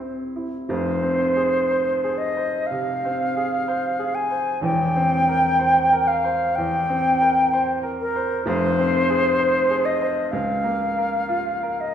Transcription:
Already playing: grand piano C2 E4 G4, flute C5
0.00 grand piano C4
0.36 grand piano E4
0.69 grand piano F1 F2, flute C5
1.03 grand piano C4
1.36 grand piano G#4
1.71 grand piano C5
2.04 grand piano G#4
2.17 flute D#5
2.37 grand piano C5
2.66 flute F5
2.71 grand piano C3
3.05 grand piano C4
3.37 grand piano G#4
3.68 grand piano C5
3.99 grand piano G#4
4.15 flute G#5
4.31 grand piano C5
4.61 grand piano E1 E2, flute G5
4.96 grand piano C4
5.28 grand piano A#4
5.59 grand piano C5
5.92 grand piano A#4
6.07 flute F5
6.24 grand piano C5
6.55 grand piano E2, flute G5
6.89 grand piano C4
7.21 grand piano A#4
7.53 grand piano C5
7.83 grand piano A#4
8.01 flute A#4
8.16 grand piano C5
8.46 grand piano F1 F2, flute C5
8.79 grand piano C4
9.10 grand piano G#4
9.39 grand piano C5
9.70 grand piano G#4
9.85 flute D#5
10.02 grand piano C5
10.31 grand piano C#2, flute F5
10.64 grand piano A#3
10.98 grand piano A#4
11.29 grand piano F4
11.63 grand piano A#4
11.81 flute D#5

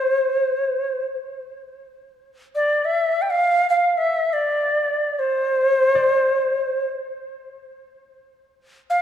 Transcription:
Already playing: native american-style wooden flute C5
2.55 native american-style wooden flute D5
2.85 native american-style wooden flute E5
3.22 native american-style wooden flute G5
3.30 native american-style wooden flute F5
3.70 native american-style wooden flute F5
3.98 native american-style wooden flute E5
4.33 native american-style wooden flute D5
5.19 native american-style wooden flute C5
5.95 harp D5
8.90 native american-style wooden flute F5

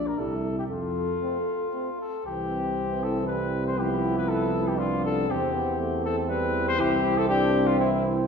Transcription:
Already playing: bass trombone A#1, french horn D4
0.07 trumpet A#4
0.18 bass trombone C2, trombone G3, french horn E4, flugelhorn E4, trumpet A4
0.59 trumpet G4
0.70 bass trombone F2, trumpet F4, french horn A4
1.22 trombone A3, flugelhorn C4
1.73 trombone A3, flugelhorn C4
2.01 trumpet A4
2.26 bass trombone C2, trombone E3, french horn E3, flugelhorn C4, trumpet G4
3.03 trumpet A4
3.27 trombone G3, trumpet B4
3.67 trumpet C5
3.77 french horn F3, flugelhorn B3, trombone E4, trumpet G4
4.18 trumpet B4
4.29 trumpet A4
4.68 trumpet G4
4.78 trombone D4, trumpet F4
5.05 trumpet A4
5.29 bass trombone E2, french horn E3, trombone C4, flugelhorn C4, trumpet G4
5.54 trombone B3
5.79 trombone A3
6.05 trumpet A4
6.29 trombone G3, trumpet B4
6.68 trumpet C5
6.79 bass trombone C2, trombone E4, trumpet G4
7.17 trumpet A4
7.29 trombone D4, trumpet G4
7.67 trumpet F4
7.79 trombone C4, trumpet E4
8.03 trombone E4

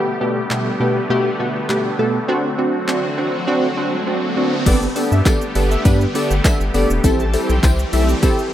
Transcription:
Already playing: analog polysynth B2 A3 B3 G4, supersaw synth D3 G3 A3 B3 G4
0.21 analog polysynth B2 A3 B3 G4
0.50 analog polysynth B2 A3 B3 G4, clap
0.80 analog polysynth B2 A3 B3 G4
1.10 analog polysynth B2 A3 B3 G4
1.39 analog polysynth B2 A3 B3 F#4
1.69 analog polysynth B2 A3 B3 G4, clap
1.99 analog polysynth B2 A3 B3 A4
2.28 supersaw synth F#3 C4 F#4, analog polysynth C4 D4 F#4, riser
2.58 analog polysynth C4 D4 F#4
2.88 analog polysynth C4 D4 F#4, clap
3.18 analog polysynth C4 D4 F#4
3.47 analog polysynth C4 D4 F#4
3.77 analog polysynth C4 D4 F#4
4.07 analog polysynth C4 D4 F#4
4.37 analog polysynth C4 D4 F#4
4.66 analog synth bass G1, supersaw synth D3 G3 A3 B3 G4, analog polysynth B3 D4 G4 A4, analog synth lead D5, kick, closed hi-hat, crash, tambourine, shaker
4.82 shaker
4.96 analog polysynth B3 D4 G4 A4, open hi-hat, tambourine, shaker
5.12 analog synth bass G2, analog synth lead E5, shaker
5.26 analog polysynth B3 D4 G4 A4, analog synth lead D5, kick, clap, closed hi-hat, tambourine, shaker
5.42 shaker
5.55 analog synth bass G1, analog polysynth B3 D4 G4 A4, open hi-hat, tambourine, shaker
5.71 analog synth lead E5, shaker
5.85 analog synth bass G2, analog polysynth B3 D4 G4 B4, kick, closed hi-hat, tambourine, shaker
6.01 shaker
6.15 analog polysynth B3 D4 G4 A4, analog synth lead D5, open hi-hat, tambourine, shaker
6.31 analog synth bass G1, shaker
6.44 analog polysynth B3 D4 G4 A4, analog synth lead E5, kick, clap, closed hi-hat, tambourine, shaker
6.60 analog synth bass G1, shaker
6.74 analog synth bass F#1, analog polysynth B3 D4 G4 A4, analog synth lead D5, open hi-hat, tambourine, shaker
6.90 analog synth bass E1, shaker
7.04 analog synth bass A1, supersaw synth E3 A3 C4 G4, analog polysynth C4 E4 G4 A4, kick, closed hi-hat, tambourine, shaker
7.20 analog synth lead A5, shaker
7.33 analog polysynth C4 E4 G4 A4, open hi-hat, tambourine, shaker
7.49 analog synth bass B1, analog synth lead G5, tambourine, shaker
7.63 analog synth bass C2, analog polysynth C4 E4 G4 C5, kick, clap, closed hi-hat, tambourine, shaker
7.79 shaker
7.93 analog synth bass B1, analog polysynth C4 E4 G4 A4, analog synth lead E5, open hi-hat, tambourine, shaker
8.09 shaker
8.23 analog polysynth C4 E4 G4 A4, kick, closed hi-hat, tambourine, shaker
8.39 shaker

